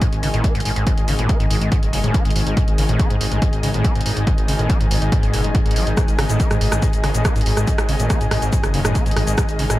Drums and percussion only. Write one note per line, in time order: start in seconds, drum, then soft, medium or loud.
0.02 kick loud
0.02 closed hi-hat medium
0.13 closed hi-hat medium
0.23 open hi-hat loud
0.34 closed hi-hat medium
0.44 kick loud
0.44 closed hi-hat medium
0.55 closed hi-hat medium
0.60 closed hi-hat medium
0.65 open hi-hat loud
0.76 closed hi-hat medium
0.87 kick loud
0.87 closed hi-hat medium
0.98 closed hi-hat medium
1.08 open hi-hat loud
1.19 closed hi-hat medium
1.29 kick loud
1.29 closed hi-hat medium
1.40 closed hi-hat medium
1.51 open hi-hat loud
1.61 closed hi-hat medium
1.72 kick loud
1.72 closed hi-hat medium
1.83 closed hi-hat medium
1.93 open hi-hat loud
2.04 closed hi-hat medium
2.14 kick loud
2.14 closed hi-hat medium
2.25 closed hi-hat medium
2.30 closed hi-hat medium
2.36 open hi-hat loud
2.47 closed hi-hat medium
2.57 kick loud
2.57 closed hi-hat medium
2.68 closed hi-hat medium
2.78 open hi-hat loud
2.89 closed hi-hat medium
2.99 kick loud
2.99 closed hi-hat medium
3.10 closed hi-hat medium
3.21 open hi-hat loud
3.32 closed hi-hat medium
3.42 kick loud
3.42 closed hi-hat medium
3.53 closed hi-hat medium
3.63 open hi-hat loud
3.74 closed hi-hat medium
3.84 kick loud
3.84 closed hi-hat medium
3.95 closed hi-hat soft
4.01 closed hi-hat medium
4.06 open hi-hat loud
4.17 closed hi-hat medium
4.27 kick loud
4.27 closed hi-hat medium
4.38 closed hi-hat soft
4.48 open hi-hat loud
4.59 closed hi-hat soft
4.70 kick loud
4.70 closed hi-hat medium
4.81 closed hi-hat medium
4.91 open hi-hat loud
5.02 closed hi-hat soft
5.12 kick loud
5.12 closed hi-hat medium
5.23 closed hi-hat medium
5.34 open hi-hat loud
5.44 closed hi-hat soft
5.55 kick loud
5.55 closed hi-hat medium
5.66 closed hi-hat soft
5.71 closed hi-hat medium
5.76 open hi-hat loud
5.87 closed hi-hat medium
5.97 kick loud
5.97 cross-stick medium
5.97 closed hi-hat medium
5.97 shaker medium
6.08 closed hi-hat soft
6.08 shaker soft
6.19 cross-stick loud
6.19 open hi-hat loud
6.29 closed hi-hat soft
6.29 shaker medium
6.40 kick loud
6.40 closed hi-hat medium
6.40 shaker medium
6.51 cross-stick medium
6.51 closed hi-hat soft
6.51 shaker soft
6.61 open hi-hat loud
6.72 cross-stick loud
6.72 closed hi-hat soft
6.72 shaker medium
6.82 kick loud
6.82 closed hi-hat medium
6.82 shaker medium
6.93 closed hi-hat soft
6.93 shaker soft
7.04 cross-stick medium
7.04 open hi-hat loud
7.14 closed hi-hat medium
7.14 shaker medium
7.25 kick loud
7.25 cross-stick loud
7.25 closed hi-hat medium
7.25 shaker medium
7.36 closed hi-hat soft
7.36 shaker soft
7.41 closed hi-hat medium
7.46 open hi-hat loud
7.57 cross-stick medium
7.57 closed hi-hat soft
7.57 shaker medium
7.67 kick loud
7.67 closed hi-hat medium
7.67 shaker medium
7.78 cross-stick loud
7.78 closed hi-hat soft
7.78 shaker soft
7.89 open hi-hat loud
8.00 closed hi-hat soft
8.00 shaker medium
8.10 kick loud
8.10 cross-stick medium
8.10 closed hi-hat medium
8.10 shaker medium
8.21 closed hi-hat soft
8.21 shaker soft
8.31 cross-stick medium
8.31 open hi-hat loud
8.42 closed hi-hat medium
8.42 shaker medium
8.53 kick loud
8.53 closed hi-hat medium
8.53 shaker medium
8.64 cross-stick medium
8.64 closed hi-hat medium
8.64 shaker soft
8.74 open hi-hat loud
8.85 cross-stick loud
8.85 closed hi-hat soft
8.85 shaker medium
8.95 kick loud
8.95 closed hi-hat medium
8.95 shaker medium
9.06 closed hi-hat soft
9.06 shaker soft
9.11 closed hi-hat medium
9.16 cross-stick medium
9.16 open hi-hat loud
9.27 closed hi-hat medium
9.27 shaker medium
9.38 kick loud
9.38 cross-stick loud
9.38 closed hi-hat medium
9.38 shaker medium
9.49 closed hi-hat soft
9.49 shaker soft
9.59 open hi-hat loud
9.70 cross-stick medium
9.70 closed hi-hat soft
9.70 shaker medium